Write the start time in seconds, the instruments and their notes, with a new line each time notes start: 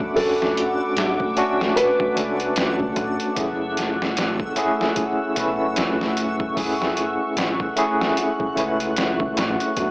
Already playing: fingered electric bass F#1, tine electric piano A3 C#4 D4 F#4 A4, ambient pad A3 F#5 B5 D6, synth texture A3
0.00 kick
0.14 tine electric piano A3 C#4 D4, felt piano A4, ambient pad A5, kick, open hi-hat
0.19 tine electric piano F#4
0.42 snare
0.57 closed hi-hat
0.97 fingered electric bass A1, snare, closed hi-hat
1.20 kick
1.36 tine electric piano A3 C#4 D4 F#4, closed hi-hat
1.61 snare
1.76 felt piano B4, closed hi-hat
2.00 kick
2.14 fingered electric bass C#2, tine electric piano A3 C#4 D4, closed hi-hat
2.19 tine electric piano A4
2.40 closed hi-hat
2.56 fingered electric bass F#1, snare, closed hi-hat
2.80 fingered electric bass C#2, kick
2.96 fingered electric bass A1, kick, closed hi-hat
3.20 closed hi-hat
3.35 fingered electric bass F#1, tine electric piano A3 C#4 E4, ambient pad C#6 E6, kick, closed hi-hat
3.39 tine electric piano G#4
3.77 snare, closed hi-hat
4.02 snare
4.17 fingered electric bass A1, snare, closed hi-hat
4.40 kick
4.56 tine electric piano A3 C#4 E4 G#4, closed hi-hat
4.81 snare
4.96 kick, closed hi-hat
5.35 fingered electric bass B1, tine electric piano A3 C#4 E4, closed hi-hat
5.40 tine electric piano B4
5.60 fingered electric bass F#1
5.76 snare, closed hi-hat
6.01 snare
6.17 closed hi-hat
6.40 kick
6.55 tine electric piano A3 C#4 E4, ambient pad F#6, kick, open hi-hat
6.60 tine electric piano G#4
6.82 snare
6.97 closed hi-hat
7.37 fingered electric bass A1, snare, closed hi-hat
7.60 kick
7.76 tine electric piano A3 C#4 E4 G#4, closed hi-hat
8.01 snare
8.17 closed hi-hat
8.40 kick
8.56 fingered electric bass C#2, tine electric piano A3 C#4 E4, closed hi-hat
8.60 tine electric piano B4
8.80 closed hi-hat
8.96 fingered electric bass F#1, snare, closed hi-hat
9.20 fingered electric bass C#2, kick
9.37 fingered electric bass A1, snare, closed hi-hat
9.60 closed hi-hat
9.75 fingered electric bass F#1, tine electric piano A3 B3 D4, ambient pad A4 F#5 B5 D6, kick, closed hi-hat
9.80 tine electric piano F#4